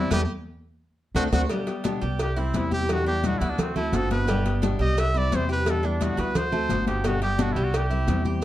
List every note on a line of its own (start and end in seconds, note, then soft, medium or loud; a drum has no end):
0.00 0.11 E3 medium
0.00 0.11 G3 medium
0.00 0.11 C4 medium
0.00 0.11 E4 medium
0.00 0.12 E4 medium
0.11 0.24 E2 loud
0.11 0.23 E3 medium
0.11 0.23 G3 loud
0.11 0.22 B3 loud
0.11 0.23 B3 medium
0.11 0.22 D4 medium
0.11 0.22 E4 medium
0.11 0.21 G4 loud
0.11 cowbell loud
0.11 high conga loud
0.11 maracas loud
1.15 1.28 D2 loud
1.15 1.27 A3 loud
1.15 1.27 C4 medium
1.15 1.27 C4 loud
1.15 1.27 D4 medium
1.15 1.27 D4 loud
1.15 1.24 F#4 loud
1.15 1.27 F#4 medium
1.15 cowbell loud
1.15 high conga loud
1.15 maracas loud
1.32 1.45 D2 loud
1.32 1.44 A3 loud
1.32 1.44 C4 medium
1.32 1.44 C4 loud
1.32 1.44 D4 loud
1.32 1.44 F#4 loud
1.32 1.42 F#4 loud
1.32 cowbell loud
1.32 high conga loud
1.32 maracas loud
1.49 1.67 B2 medium
1.49 1.67 D3 medium
1.49 1.84 G3 medium
1.49 1.67 G3 medium
1.49 1.67 B3 medium
1.49 1.66 G4 medium
1.49 cowbell loud
1.49 high conga soft
1.49 maracas medium
1.67 1.84 G3 soft
1.67 1.85 B3 soft
1.67 1.84 G4 soft
1.67 cowbell medium
1.67 high conga soft
1.67 maracas soft
1.84 2.01 B2 medium
1.84 2.02 D3 medium
1.84 2.02 G3 medium
1.84 2.02 B3 medium
1.84 2.02 D4 medium
1.84 2.01 G4 medium
1.84 cowbell medium
1.84 high conga loud
1.84 maracas medium
2.01 2.50 C2 medium
2.01 2.35 G3 medium
2.01 2.19 G3 soft
2.01 2.19 B3 medium
2.01 2.19 G4 medium
2.01 high conga soft
2.01 maracas soft
2.19 2.41 G4 medium
2.19 muted nylon-string guitar stroke medium
2.19 cowbell loud
2.19 high conga soft
2.19 maracas medium
2.36 2.54 G3 soft
2.36 2.54 C4 soft
2.36 2.58 C4 medium
2.36 2.70 E4 medium
2.36 2.53 E4 soft
2.36 high conga soft
2.36 maracas soft
2.54 3.35 E2 medium
2.54 2.88 C3 medium
2.54 2.89 E3 medium
2.54 2.89 G3 medium
2.54 2.89 C4 medium
2.54 2.89 E4 medium
2.54 2.73 E4 medium
2.54 cowbell medium
2.54 high conga medium
2.54 maracas medium
2.71 3.05 G4 medium
2.71 2.94 G4 loud
2.71 high conga medium
2.71 maracas soft
2.89 3.06 B2 medium
2.89 3.06 D3 medium
2.89 3.06 G3 medium
2.89 3.06 B3 medium
2.89 3.04 E4 medium
2.89 3.07 F#4 medium
2.89 cowbell loud
2.89 high conga soft
2.89 maracas medium
3.05 3.24 G3 soft
3.05 3.23 B3 soft
3.05 3.40 D4 medium
3.05 3.22 E4 medium
3.05 3.28 G4 loud
3.05 high conga soft
3.05 maracas soft
3.24 3.40 B2 medium
3.24 3.41 D3 medium
3.24 3.41 G3 medium
3.24 3.41 B3 medium
3.24 3.40 E4 medium
3.24 3.40 F#4 medium
3.24 cowbell medium
3.24 high conga medium
3.24 maracas medium
3.39 3.89 D2 loud
3.39 3.51 E4 medium
3.39 3.75 F#4 loud
3.39 cowbell medium
3.39 high conga soft
3.39 maracas soft
3.43 3.59 G3 soft
3.43 3.58 B3 soft
3.50 3.63 D4 medium
3.59 3.76 C4 medium
3.59 muted nylon-string guitar stroke medium
3.59 cowbell loud
3.59 high conga soft
3.59 low conga medium
3.59 maracas medium
3.76 3.92 A3 medium
3.76 3.92 A3 soft
3.76 3.93 C4 soft
3.76 3.97 E4 medium
3.76 3.93 F#4 soft
3.76 high conga soft
3.76 low conga medium
3.76 maracas soft
3.92 4.73 G1 medium
3.92 4.27 D3 medium
3.92 4.27 A3 medium
3.92 4.27 C4 medium
3.92 4.26 F#4 medium
3.92 4.28 F#4 medium
3.92 4.11 A4 medium
3.92 cowbell medium
3.92 high conga medium
3.92 maracas medium
4.10 4.59 B4 medium
4.10 cowbell medium
4.10 high conga medium
4.10 maracas soft
4.27 4.44 B2 medium
4.27 4.44 D3 medium
4.27 4.61 G3 medium
4.27 4.45 G3 medium
4.27 4.45 B3 medium
4.27 4.44 G4 medium
4.27 cowbell loud
4.27 high conga soft
4.27 maracas medium
4.45 4.61 G3 soft
4.45 4.62 B3 soft
4.45 4.62 G4 medium
4.45 cowbell medium
4.45 high conga soft
4.45 maracas soft
4.62 4.78 B2 medium
4.62 4.79 D3 medium
4.62 4.79 G3 medium
4.62 4.79 B3 medium
4.62 4.79 D4 medium
4.62 4.78 G4 medium
4.62 cowbell medium
4.62 high conga loud
4.62 maracas medium
4.79 5.28 C2 medium
4.79 5.13 G3 medium
4.79 4.97 G3 soft
4.79 4.97 B3 soft
4.79 4.96 G4 medium
4.79 5.01 D#5 loud
4.79 high conga soft
4.79 maracas soft
4.97 5.19 E5 loud
4.97 muted nylon-string guitar stroke medium
4.97 cowbell loud
4.97 high conga soft
4.97 maracas medium
5.14 5.31 G3 soft
5.14 5.31 C4 soft
5.14 5.31 E4 medium
5.14 5.48 E4 medium
5.14 5.37 D5 loud
5.14 high conga soft
5.14 maracas soft
5.31 6.12 E2 loud
5.31 5.65 C3 medium
5.31 5.65 E3 medium
5.31 5.65 G3 medium
5.31 5.66 C4 medium
5.31 5.66 E4 medium
5.31 cowbell medium
5.31 high conga medium
5.31 maracas medium
5.35 5.51 C5 medium
5.49 5.82 G4 medium
5.49 5.72 B4 loud
5.49 maracas soft
5.65 5.82 B2 medium
5.65 5.83 D3 medium
5.65 5.83 G3 medium
5.65 5.83 B3 medium
5.65 5.82 E4 medium
5.65 cowbell loud
5.65 high conga soft
5.65 maracas medium
5.70 5.87 A4 medium
5.83 6.00 G3 soft
5.83 6.00 B3 soft
5.83 6.17 D4 medium
5.83 6.04 D4 medium
5.83 6.00 E4 medium
5.83 high conga soft
5.83 maracas soft
6.00 6.17 B2 medium
6.00 6.17 D3 medium
6.00 6.17 G3 medium
6.00 6.17 B3 medium
6.00 6.16 E4 medium
6.00 6.22 F#4 medium
6.00 cowbell medium
6.00 high conga medium
6.00 maracas medium
6.17 6.66 D2 medium
6.17 6.35 G3 soft
6.17 6.35 B3 soft
6.17 6.34 E4 soft
6.17 6.51 F#4 medium
6.17 6.39 B4 medium
6.17 cowbell medium
6.17 high conga soft
6.17 maracas soft
6.35 6.87 C5 loud
6.35 muted nylon-string guitar stroke medium
6.35 cowbell loud
6.35 high conga soft
6.35 low conga medium
6.35 maracas medium
6.52 6.69 A3 medium
6.52 6.69 A3 soft
6.52 6.69 C4 soft
6.52 6.69 F#4 medium
6.52 high conga soft
6.52 low conga medium
6.52 maracas soft
6.69 7.51 G1 medium
6.69 7.03 D3 medium
6.69 7.04 A3 medium
6.69 7.04 C4 medium
6.69 7.03 F#4 medium
6.69 7.05 F#4 medium
6.69 cowbell medium
6.69 high conga medium
6.69 maracas medium
6.87 7.08 G4 medium
6.87 cowbell medium
6.87 high conga medium
6.87 maracas soft
7.04 7.21 B2 medium
7.04 7.21 D3 medium
7.04 7.38 G3 medium
7.04 7.21 G3 medium
7.04 7.20 B3 medium
7.04 7.23 F#4 medium
7.04 7.19 G4 medium
7.04 cowbell loud
7.04 high conga soft
7.04 maracas medium
7.20 7.37 G3 soft
7.20 7.38 B3 soft
7.20 7.37 G4 medium
7.20 7.43 G4 loud
7.20 cowbell medium
7.20 high conga soft
7.20 maracas soft
7.38 7.55 B2 medium
7.38 7.55 D3 medium
7.38 7.55 G3 medium
7.38 7.55 B3 medium
7.38 7.55 D4 medium
7.38 7.54 G4 medium
7.38 cowbell medium
7.38 high conga loud
7.38 maracas medium
7.42 7.54 F#4 medium
7.52 8.04 C2 medium
7.52 7.90 G3 medium
7.52 7.66 E4 medium
7.52 7.72 G4 medium
7.52 high conga soft
7.52 maracas soft
7.56 7.72 G3 soft
7.56 7.73 B3 soft
7.64 7.78 F#4 medium
7.73 8.27 G4 medium
7.73 muted nylon-string guitar stroke medium
7.73 cowbell loud
7.73 high conga soft
7.73 maracas medium
7.90 8.07 G3 soft
7.90 8.07 C4 soft
7.90 8.07 E4 soft
7.90 8.24 E4 medium
7.90 high conga soft
7.90 maracas soft
8.07 8.44 E2 loud
8.07 8.41 C3 medium
8.07 8.42 E3 medium
8.07 8.42 G3 medium
8.07 8.42 C4 medium
8.07 8.42 E4 medium
8.07 cowbell medium
8.07 high conga medium
8.07 maracas medium
8.25 8.44 G4 medium
8.25 high conga medium
8.25 maracas soft